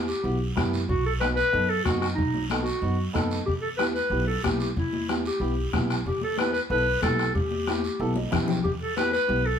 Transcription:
0.00 0.11 E2 medium
0.08 0.53 G4 medium
0.08 short guiro medium
0.23 0.50 B1 medium
0.23 0.35 B3 medium
0.23 0.35 E4 medium
0.23 0.35 F#4 medium
0.23 long guiro medium
0.56 0.83 F#2 medium
0.56 0.79 B3 medium
0.56 0.79 E4 medium
0.56 0.79 G4 medium
0.56 bombo low medium
0.56 bombo rim medium
0.56 high conga medium
0.56 short guiro medium
0.73 short guiro medium
0.89 1.41 B1 medium
0.89 1.04 F#4 medium
0.89 bombo low medium
0.89 long guiro medium
1.06 1.13 A4 medium
1.20 1.32 B3 medium
1.20 1.32 D#4 medium
1.20 1.32 F#4 medium
1.20 1.28 B4 medium
1.20 bombo rim medium
1.20 high conga medium
1.20 short guiro medium
1.36 1.71 B4 loud
1.36 short guiro medium
1.52 1.79 F#2 loud
1.52 1.64 B3 medium
1.52 1.64 D#4 medium
1.52 1.64 A4 medium
1.52 long guiro medium
1.69 1.84 A4 medium
1.84 2.12 F#2 medium
1.84 2.09 B3 medium
1.84 2.09 D#4 medium
1.84 2.00 F#4 medium
1.84 2.09 F#4 medium
1.84 bombo low medium
1.84 bombo rim medium
1.84 high conga medium
1.84 short guiro medium
2.00 2.08 F#4 medium
2.00 bombo rim medium
2.00 short guiro medium
2.14 2.70 B1 medium
2.14 2.46 D#4 medium
2.14 bombo low medium
2.19 long guiro medium
2.34 high conga medium
2.50 2.62 B3 medium
2.50 2.62 D#4 medium
2.50 2.62 A4 medium
2.50 bombo rim medium
2.50 high conga medium
2.50 short guiro medium
2.63 3.10 F#4 medium
2.63 short guiro medium
2.82 3.08 F#2 medium
2.82 2.94 B3 medium
2.82 2.94 D#4 medium
2.82 2.94 F#4 medium
2.82 long guiro medium
3.13 3.41 F#2 medium
3.13 3.37 B3 medium
3.13 3.37 D#4 medium
3.13 3.37 A4 medium
3.13 bombo low medium
3.13 bombo rim medium
3.13 high conga medium
3.13 short guiro medium
3.31 short guiro medium
3.46 3.99 E2 medium
3.46 3.54 G4 medium
3.46 bombo low medium
3.46 long guiro medium
3.62 3.69 A4 medium
3.77 3.90 B3 medium
3.77 3.90 E4 medium
3.77 3.90 G4 medium
3.77 3.85 B4 loud
3.77 bombo rim medium
3.77 high conga medium
3.77 short guiro medium
3.95 4.25 B4 medium
3.95 short guiro medium
4.10 4.37 B1 medium
4.10 4.23 B3 medium
4.10 4.23 E4 medium
4.10 4.23 G4 medium
4.10 long guiro medium
4.27 4.42 A4 medium
4.43 4.70 B1 medium
4.43 4.67 B3 medium
4.43 4.67 E4 medium
4.43 4.59 G4 medium
4.43 4.67 G4 medium
4.43 bombo low medium
4.43 bombo rim medium
4.43 high conga medium
4.43 short guiro medium
4.60 4.69 G4 medium
4.60 short guiro medium
4.76 5.28 E2 medium
4.76 5.07 E4 medium
4.76 bombo low medium
4.76 long guiro medium
4.93 high conga medium
5.09 5.20 B3 medium
5.09 5.20 E4 medium
5.09 5.20 G4 medium
5.09 bombo rim medium
5.09 high conga medium
5.09 short guiro medium
5.25 5.71 G4 medium
5.25 short guiro medium
5.40 5.66 B1 medium
5.40 5.52 B3 medium
5.40 5.52 E4 medium
5.40 5.52 G4 medium
5.40 long guiro medium
5.73 5.99 B1 medium
5.73 5.96 B3 medium
5.73 5.96 E4 medium
5.73 5.96 G4 medium
5.73 bombo low medium
5.73 bombo rim medium
5.73 high conga medium
5.73 short guiro medium
5.90 bombo rim medium
5.90 short guiro medium
6.06 6.57 E2 medium
6.06 6.22 G4 medium
6.06 bombo low medium
6.06 long guiro medium
6.21 6.38 A4 medium
6.21 high conga medium
6.37 6.49 B3 medium
6.37 6.49 E4 medium
6.37 6.50 G4 medium
6.37 6.53 B4 medium
6.37 bombo rim medium
6.37 high conga medium
6.37 short guiro medium
6.53 6.61 B4 medium
6.53 short guiro medium
6.70 6.96 B1 medium
6.70 6.81 B3 medium
6.70 6.81 E4 medium
6.70 6.82 A4 medium
6.70 7.00 B4 loud
6.70 long guiro medium
7.02 7.28 B1 medium
7.02 7.25 B3 medium
7.02 7.25 E4 medium
7.02 7.25 G4 medium
7.02 7.32 A4 medium
7.02 bombo low medium
7.02 bombo rim medium
7.02 high conga medium
7.02 short guiro medium
7.19 bombo rim medium
7.19 short guiro medium
7.35 7.87 E2 medium
7.35 8.27 G4 medium
7.35 bombo low medium
7.35 long guiro medium
7.51 high conga medium
7.67 7.79 B3 medium
7.67 7.79 E4 medium
7.67 7.79 G4 medium
7.67 bombo rim medium
7.67 high conga medium
7.67 short guiro medium
7.84 short guiro medium
8.00 8.25 B1 medium
8.00 8.11 B3 medium
8.00 8.11 E4 medium
8.00 8.11 A4 medium
8.00 long guiro medium
8.16 8.31 D#5 medium
8.16 high conga medium
8.30 8.58 B1 medium
8.30 8.54 B3 medium
8.30 8.54 E4 medium
8.30 8.54 G4 medium
8.30 8.46 E5 medium
8.30 bombo low medium
8.30 bombo rim medium
8.30 low conga medium
8.30 short guiro medium
8.48 8.63 G5 medium
8.48 low conga loud
8.48 short guiro medium
8.64 9.16 E2 medium
8.64 8.71 G4 medium
8.64 bombo low medium
8.64 long guiro medium
8.81 8.96 A4 medium
8.97 9.08 B3 medium
8.97 9.08 E4 medium
8.97 9.08 G4 medium
8.97 9.11 B4 loud
8.97 bombo rim medium
8.97 high conga medium
8.97 short guiro medium
9.13 9.47 B4 loud
9.13 short guiro medium
9.27 9.55 B1 medium
9.27 9.39 B3 medium
9.27 9.39 E4 medium
9.27 9.40 G4 medium
9.27 long guiro medium
9.46 9.59 A4 medium

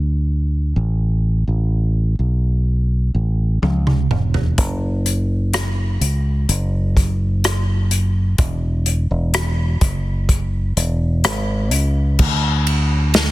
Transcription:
0.00 0.72 D2 medium
0.76 1.44 A1 medium
1.47 2.15 A1 medium
2.19 3.11 B1 medium
3.14 3.59 A1 medium
3.62 4.07 C#2 medium
3.62 high tom soft
3.87 mid tom medium
4.11 4.58 E1 medium
4.11 mid tom medium
4.34 floor tom medium
4.58 5.97 F#1 medium
4.58 kick medium
4.58 closed hi-hat medium
5.06 closed hi-hat medium
5.53 cross-stick medium
5.53 closed hi-hat medium
6.01 6.45 C#2 medium
6.01 closed hi-hat medium
6.49 8.35 F#1 medium
6.49 closed hi-hat medium
6.97 kick medium
6.97 closed hi-hat medium
7.44 cross-stick medium
7.44 closed hi-hat medium
7.91 closed hi-hat medium
8.38 9.06 E1 medium
8.38 kick loud
8.38 closed hi-hat medium
8.86 closed hi-hat medium
9.11 9.78 E1 medium
9.34 cross-stick loud
9.34 closed hi-hat medium
9.81 10.73 F#1 medium
9.81 kick medium
9.81 closed hi-hat medium
10.29 kick medium
10.29 closed hi-hat medium
10.77 11.24 E1 loud
10.77 closed hi-hat medium
11.24 11.73 G#1 medium
11.24 cross-stick loud
11.24 closed hi-hat medium
11.71 12.17 C#2 medium
11.71 closed hi-hat medium
12.19 13.31 D2 medium
12.19 kick loud
12.19 crash medium
12.67 ride medium
13.14 snare loud
13.14 ride medium

